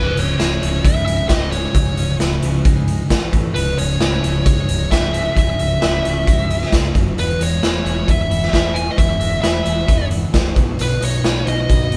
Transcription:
Already playing: picked electric bass C#1, clean electric guitar C#2, lead electric guitar B4
0.15 picked electric bass C#1, clean electric guitar C#3, lead electric guitar C#5, closed hi-hat
0.39 picked electric bass C#1, clean electric guitar E4, snare, closed hi-hat
0.61 picked electric bass C#1, clean electric guitar C#3, closed hi-hat
0.84 picked electric bass C#1, clean electric guitar G#3, lead electric guitar E5, kick, closed hi-hat
1.06 picked electric bass C#1, clean electric guitar G#2, lead electric guitar E5, closed hi-hat
1.29 picked electric bass C#1, clean electric guitar C#3, lead electric guitar D#5, kick, snare, closed hi-hat
1.51 clean electric guitar G#3, lead electric guitar C#5, closed hi-hat
1.74 picked electric bass C#1, clean electric guitar C#2, kick, closed hi-hat
1.97 picked electric bass C#1, clean electric guitar C#3, closed hi-hat
2.19 picked electric bass C#1, clean electric guitar E4, snare, closed hi-hat
2.42 picked electric bass C#1, clean electric guitar C#3, closed hi-hat
2.64 picked electric bass C#1, clean electric guitar G#3, kick, closed hi-hat
2.87 clean electric guitar G#2, closed hi-hat
3.09 picked electric bass A1, clean electric guitar A2, kick, snare, closed hi-hat
3.32 picked electric bass A1, clean electric guitar A2, kick, closed hi-hat
3.54 picked electric bass C#1, clean electric guitar C#2, lead electric guitar B4, closed hi-hat
3.77 picked electric bass C#1, clean electric guitar C#3, lead electric guitar C#5, closed hi-hat
4.01 picked electric bass C#1, clean electric guitar E4, snare, closed hi-hat
4.23 picked electric bass C#1, clean electric guitar C#3, closed hi-hat
4.45 picked electric bass C#1, clean electric guitar G#3, lead electric guitar C#5, kick, closed hi-hat
4.68 picked electric bass C#1, clean electric guitar G#2, closed hi-hat
4.90 picked electric bass C#1, clean electric guitar C#3, lead electric guitar E5, kick, snare, closed hi-hat
5.12 clean electric guitar G#3, closed hi-hat
5.36 picked electric bass C#1, clean electric guitar C#2, lead electric guitar E5, kick, closed hi-hat
5.59 picked electric bass C#1, clean electric guitar C#3, closed hi-hat
5.81 picked electric bass C#1, clean electric guitar E4, snare, closed hi-hat
6.04 picked electric bass C#1, clean electric guitar C#3, closed hi-hat
6.27 picked electric bass C#1, clean electric guitar G#3, kick, closed hi-hat
6.50 clean electric guitar G#2, closed hi-hat
6.62 snare
6.72 picked electric bass C#2, clean electric guitar C#3, kick, snare, closed hi-hat
6.95 picked electric bass F#1, clean electric guitar F#2, kick, closed hi-hat
7.17 picked electric bass E1, clean electric guitar E2, lead electric guitar B4, closed hi-hat
7.39 picked electric bass E1, clean electric guitar G#3, lead electric guitar C#5, closed hi-hat
7.63 picked electric bass E1, clean electric guitar E4, snare, closed hi-hat
7.84 picked electric bass E1, clean electric guitar G#3, closed hi-hat
8.07 picked electric bass E1, clean electric guitar B3, lead electric guitar E5, kick, closed hi-hat
8.30 picked electric bass E1, clean electric guitar E3, closed hi-hat
8.43 snare
8.53 picked electric bass E1, clean electric guitar G#3, lead electric guitar E5, kick, snare, closed hi-hat
8.74 clean electric guitar B3, lead electric guitar G#5, closed hi-hat
8.91 lead electric guitar D#5
8.98 picked electric bass E1, clean electric guitar E2, lead electric guitar E5, kick, closed hi-hat
9.20 picked electric bass E1, clean electric guitar G#3, closed hi-hat
9.42 picked electric bass E1, clean electric guitar E4, lead electric guitar E5, snare, closed hi-hat
9.65 picked electric bass E1, clean electric guitar G#3, closed hi-hat
9.88 picked electric bass E1, clean electric guitar B3, kick, closed hi-hat
10.10 clean electric guitar E3, closed hi-hat
10.33 picked electric bass C#1, clean electric guitar G#3, kick, snare, closed hi-hat
10.56 picked electric bass B1, clean electric guitar B2, kick, closed hi-hat
10.79 picked electric bass B1, clean electric guitar B2, lead electric guitar B4, closed hi-hat
11.01 picked electric bass B1, clean electric guitar D#4, lead electric guitar C#5, closed hi-hat
11.24 picked electric bass B1, clean electric guitar B4, snare, closed hi-hat
11.46 picked electric bass B1, clean electric guitar D#4, lead electric guitar D#5, closed hi-hat
11.69 picked electric bass B1, clean electric guitar F#4, kick, closed hi-hat
11.92 picked electric bass B1, clean electric guitar B3, closed hi-hat

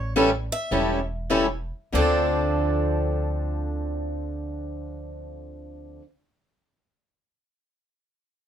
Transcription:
Already playing: upright bass A1, steel-string acoustic guitar C#5
0.16 steel-string acoustic guitar E3 G3 C#4 E4 A4
0.52 steel-string acoustic guitar E5
0.71 upright bass E1, steel-string acoustic guitar E3 G3 C#4 E4 A4
1.30 steel-string acoustic guitar E3 G3 C#4 E4 A4
1.92 upright bass D2, steel-string acoustic guitar D3 F3 C4 D4 A4 D5

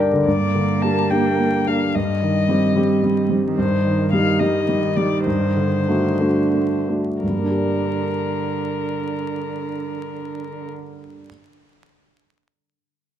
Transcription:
Already playing: grand piano G2 D3 A#3 A#4 D5 A#5
0.00 grand piano D4
0.13 grand piano D3
0.27 grand piano G2, cello A#3, violin D5
0.55 grand piano D3
0.82 grand piano A#3 D4 G4, violin A5
1.10 grand piano A#3 D4 G4, violin G5
1.39 grand piano A#3
1.67 grand piano A#3 D4 G4, violin F5
1.94 grand piano G2, cello G3, violin D#5
2.22 grand piano D#3
2.49 grand piano G3 C4 G4
2.76 grand piano G3 C4 G4
3.03 grand piano G3
3.30 grand piano G3 C4 G4
3.57 grand piano G2, cello D#3, violin C5
3.85 grand piano D#3
4.12 grand piano G3 D#4 G4, violin F5
4.40 grand piano G3 D#4 G4, violin D#5
4.69 grand piano G3
4.97 grand piano G3 D#4 G4, violin D5
5.26 grand piano G2, violin C5
5.56 grand piano D3
5.88 grand piano A3 D4 F#4
6.20 cello D3, grand piano A3 D4 F#4
6.54 grand piano A3
6.89 grand piano A3 D4 F#4
7.22 grand piano G2, cello D3, violin A#4
7.30 grand piano G3
7.37 grand piano A#3
7.44 grand piano D4
7.51 grand piano G4
7.58 grand piano D5

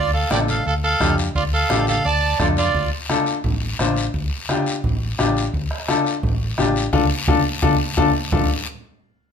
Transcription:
Already playing: fingered electric bass D2, trumpet F4, accordion D5
0.14 trumpet A4, accordion F5
0.30 fingered electric bass A1, upright piano D4 F4 A4, trumpet D5, accordion G5, bombo rim, high conga, short guiro
0.48 trumpet A4, accordion F5, high conga, short guiro
0.66 fingered electric bass D2, trumpet A4, accordion F5, long guiro
0.83 trumpet A4, accordion F5, high conga
1.00 fingered electric bass F2, upright piano D4 F4 G4, bombo low, bombo rim, high conga, short guiro
1.18 short guiro
1.35 fingered electric bass D2, trumpet F4, accordion D5, bombo low, long guiro
1.54 trumpet A4, accordion F5
1.70 fingered electric bass A1, upright piano D4 F4 G4, bombo rim, high conga, short guiro
1.87 trumpet A4, accordion F5, high conga, short guiro
2.05 fingered electric bass D2, trumpet D5, accordion A5, long guiro
2.22 high conga
2.39 fingered electric bass F2, upright piano D4 F4 A4, trumpet F4, accordion D5, bombo low, bombo rim, high conga, low conga, short guiro
2.57 trumpet F4, accordion D5, high conga, short guiro
2.74 fingered electric bass D2, bombo low, high conga, long guiro
3.09 upright piano D4 F4 A4, bombo rim, high conga, short guiro
3.26 short guiro
3.44 fingered electric bass A1, bombo low, high conga, low conga, long guiro
3.79 fingered electric bass A1, upright piano D4 F4 C5, bombo rim, high conga, short guiro
3.96 short guiro
4.14 fingered electric bass D2, bombo low, high conga, long guiro
4.49 upright piano D4 F4 G4, bombo rim, high conga, short guiro
4.66 short guiro
4.84 fingered electric bass A1, bombo low, high conga, low conga, long guiro
5.19 fingered electric bass A1, upright piano D4 F4 G4, bombo rim, high conga, short guiro
5.37 short guiro
5.54 fingered electric bass D2, bombo low, high conga, long guiro
5.71 bombo rim
5.88 upright piano D4 F4 A4, bombo rim, high conga, short guiro
6.06 short guiro
6.23 fingered electric bass A1, bombo low, high conga, low conga, long guiro
6.58 fingered electric bass A1, upright piano D4 F4 G4, bombo rim, high conga, short guiro
6.76 short guiro
6.93 fingered electric bass D2, upright piano D4 F4 A4, bombo low, high conga, long guiro
7.28 fingered electric bass D2, upright piano D4 F4 A4, bombo low, high conga, long guiro
7.62 fingered electric bass D2, upright piano D4 F4 A4, bombo low, high conga, long guiro
7.97 fingered electric bass D2, upright piano D4 F4 A4, bombo low, high conga, long guiro
8.32 fingered electric bass D2, upright piano D4 F4 A4, bombo low, low conga, long guiro

